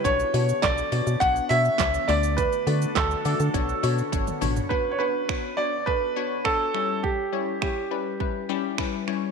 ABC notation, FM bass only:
X:1
M:4/4
L:1/16
Q:1/4=103
K:Bm
V:1 name="FM bass" clef=bass
B,,,2 B,,2 B,,,2 B,, B,, B,,,2 B,,2 C,,2 D,,2- | D,,2 D,2 D,,2 D, D, B,,,2 B,,2 G,,,2 A,,,2 | z16 | z16 |]